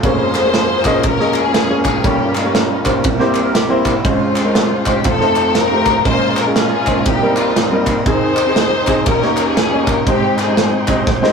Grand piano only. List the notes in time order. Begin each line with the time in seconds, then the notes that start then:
0.03 F1 F2 A#3 C#4 F4 G#4 C#5
0.45 A#3 C#4 F4 G#4 C#5
0.85 A#3 C#4 F4 G#4 D#5
1.20 A#3 C#4 F4 G#4 D#5
1.69 A#3 C#4 F4 G#4 C#5
2.04 G1 G2 A#3 C#4 F4 G4 C#5
2.43 A#3 C#4 F4 G4 C#5
2.84 A#3 C#4 F4 G4 C5
3.04 C2 C3
3.19 A#3 C4 E4 G4 C5
3.69 A#3 C4 E4 G4 C5
4.04 C#2 C#3 G#3 C4 C#4 F4 C5
4.44 G#3 C4 C#4 F4 A#4
4.85 G#3 C4 C#4 F4 C5
5.06 F1 F2
5.21 A3 C4 D#4 F4 C5
5.71 A3 C4 D#4 F4 G4
6.05 A#1 A#2 G#3 A#3 C#4 F4 A#4
6.46 G#3 A#3 C#4 F4 G#4
6.87 G#3 A#3 C#4 F4 C5
7.07 C2 C3
7.22 G3 A#3 C4 D#4 A#4
7.71 G3 A#3 C4 D#4 A#4
8.06 D#2 D#3 C4 D#4 G#4
8.46 C4 D#4 G#4
8.87 C4 D#4 G#4
9.08 D#2 D#3
9.22 A#3 C#4 D#4 G4 C#5
9.72 A#3 C#4 D#4 G4 C#5
10.07 G#1 G#2 G#3 C4 D#4 G4 C5
10.47 G#3 C4 D#4 G4 C5
10.87 G#3 C4 D#4 G4 D#5
11.22 G#3 C4 D#4 G4 C5